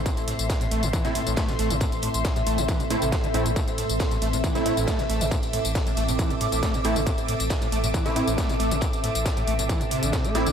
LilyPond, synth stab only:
\new Staff \with { instrumentName = "Synth stab" } { \time 4/4 \key a \minor \tempo 4 = 137 r2 r16 <a c' e'>16 r4. | r2 r8 <a c' e'>16 r8. <a c' e'>16 r16 | r2 r16 <a c' e'>16 <a c' e'>8 r4 | r2. r8 <a c' e'>16 r16 |
r2 r16 <a c' e'>16 <a c' e'>8 r4 | r2. r8 <a c' e'>16 r16 | }